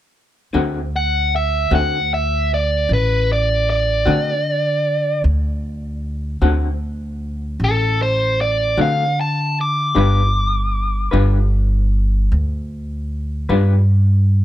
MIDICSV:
0, 0, Header, 1, 4, 480
1, 0, Start_track
1, 0, Tempo, 785340
1, 332, Time_signature, 12, 3, 24, 8
1, 8829, End_track
2, 0, Start_track
2, 0, Title_t, "Lead electric guitar"
2, 0, Program_c, 0, 29
2, 588, Note_on_c, 0, 78, 86
2, 813, Note_off_c, 0, 78, 0
2, 830, Note_on_c, 0, 76, 78
2, 1054, Note_off_c, 0, 76, 0
2, 1069, Note_on_c, 0, 78, 80
2, 1293, Note_off_c, 0, 78, 0
2, 1308, Note_on_c, 0, 76, 78
2, 1532, Note_off_c, 0, 76, 0
2, 1552, Note_on_c, 0, 74, 85
2, 1774, Note_off_c, 0, 74, 0
2, 1793, Note_on_c, 0, 71, 77
2, 2015, Note_off_c, 0, 71, 0
2, 2033, Note_on_c, 0, 74, 79
2, 2254, Note_off_c, 0, 74, 0
2, 2262, Note_on_c, 0, 74, 88
2, 3190, Note_off_c, 0, 74, 0
2, 4670, Note_on_c, 0, 69, 92
2, 4892, Note_off_c, 0, 69, 0
2, 4904, Note_on_c, 0, 72, 74
2, 5129, Note_off_c, 0, 72, 0
2, 5142, Note_on_c, 0, 74, 82
2, 5367, Note_off_c, 0, 74, 0
2, 5386, Note_on_c, 0, 77, 84
2, 5609, Note_off_c, 0, 77, 0
2, 5627, Note_on_c, 0, 81, 79
2, 5850, Note_off_c, 0, 81, 0
2, 5874, Note_on_c, 0, 86, 90
2, 6094, Note_off_c, 0, 86, 0
2, 6102, Note_on_c, 0, 86, 99
2, 7030, Note_off_c, 0, 86, 0
2, 8829, End_track
3, 0, Start_track
3, 0, Title_t, "Clean electric guitar"
3, 0, Program_c, 1, 27
3, 325, Note_on_c, 1, 50, 73
3, 331, Note_on_c, 1, 57, 79
3, 333, Note_on_c, 1, 66, 77
3, 334, Note_on_c, 1, 60, 89
3, 473, Note_off_c, 1, 50, 0
3, 476, Note_off_c, 1, 57, 0
3, 477, Note_off_c, 1, 60, 0
3, 477, Note_off_c, 1, 66, 0
3, 1047, Note_on_c, 1, 60, 59
3, 1048, Note_on_c, 1, 66, 57
3, 1055, Note_on_c, 1, 57, 53
3, 1058, Note_on_c, 1, 50, 52
3, 1193, Note_off_c, 1, 60, 0
3, 1193, Note_off_c, 1, 66, 0
3, 1197, Note_off_c, 1, 57, 0
3, 1198, Note_off_c, 1, 50, 0
3, 2478, Note_on_c, 1, 66, 73
3, 2480, Note_on_c, 1, 60, 60
3, 2486, Note_on_c, 1, 57, 53
3, 2489, Note_on_c, 1, 50, 59
3, 2628, Note_off_c, 1, 60, 0
3, 2628, Note_off_c, 1, 66, 0
3, 2631, Note_off_c, 1, 57, 0
3, 2633, Note_off_c, 1, 50, 0
3, 3922, Note_on_c, 1, 66, 69
3, 3923, Note_on_c, 1, 60, 70
3, 3929, Note_on_c, 1, 57, 57
3, 3932, Note_on_c, 1, 50, 62
3, 4069, Note_off_c, 1, 60, 0
3, 4069, Note_off_c, 1, 66, 0
3, 4072, Note_off_c, 1, 57, 0
3, 4074, Note_off_c, 1, 50, 0
3, 5364, Note_on_c, 1, 66, 66
3, 5368, Note_on_c, 1, 60, 64
3, 5371, Note_on_c, 1, 57, 64
3, 5372, Note_on_c, 1, 50, 56
3, 5509, Note_off_c, 1, 66, 0
3, 5511, Note_off_c, 1, 60, 0
3, 5513, Note_off_c, 1, 50, 0
3, 5513, Note_off_c, 1, 57, 0
3, 6080, Note_on_c, 1, 55, 75
3, 6083, Note_on_c, 1, 62, 80
3, 6087, Note_on_c, 1, 65, 72
3, 6088, Note_on_c, 1, 71, 83
3, 6228, Note_off_c, 1, 55, 0
3, 6229, Note_off_c, 1, 62, 0
3, 6231, Note_off_c, 1, 65, 0
3, 6231, Note_off_c, 1, 71, 0
3, 6793, Note_on_c, 1, 71, 73
3, 6799, Note_on_c, 1, 65, 75
3, 6802, Note_on_c, 1, 55, 60
3, 6802, Note_on_c, 1, 62, 63
3, 6944, Note_off_c, 1, 71, 0
3, 6947, Note_off_c, 1, 65, 0
3, 6948, Note_off_c, 1, 55, 0
3, 6949, Note_off_c, 1, 62, 0
3, 8246, Note_on_c, 1, 71, 80
3, 8250, Note_on_c, 1, 65, 70
3, 8253, Note_on_c, 1, 62, 70
3, 8255, Note_on_c, 1, 55, 63
3, 8392, Note_off_c, 1, 71, 0
3, 8394, Note_off_c, 1, 65, 0
3, 8395, Note_off_c, 1, 62, 0
3, 8396, Note_off_c, 1, 55, 0
3, 8829, End_track
4, 0, Start_track
4, 0, Title_t, "Upright bass"
4, 0, Program_c, 2, 32
4, 329, Note_on_c, 2, 38, 88
4, 1026, Note_off_c, 2, 38, 0
4, 1045, Note_on_c, 2, 38, 93
4, 1743, Note_off_c, 2, 38, 0
4, 1767, Note_on_c, 2, 33, 84
4, 2463, Note_off_c, 2, 33, 0
4, 2485, Note_on_c, 2, 50, 84
4, 3182, Note_off_c, 2, 50, 0
4, 3203, Note_on_c, 2, 38, 90
4, 3901, Note_off_c, 2, 38, 0
4, 3921, Note_on_c, 2, 38, 91
4, 4619, Note_off_c, 2, 38, 0
4, 4642, Note_on_c, 2, 33, 90
4, 5340, Note_off_c, 2, 33, 0
4, 5363, Note_on_c, 2, 50, 91
4, 6060, Note_off_c, 2, 50, 0
4, 6086, Note_on_c, 2, 31, 88
4, 6782, Note_off_c, 2, 31, 0
4, 6805, Note_on_c, 2, 31, 96
4, 7502, Note_off_c, 2, 31, 0
4, 7528, Note_on_c, 2, 38, 87
4, 8224, Note_off_c, 2, 38, 0
4, 8247, Note_on_c, 2, 43, 86
4, 8829, Note_off_c, 2, 43, 0
4, 8829, End_track
0, 0, End_of_file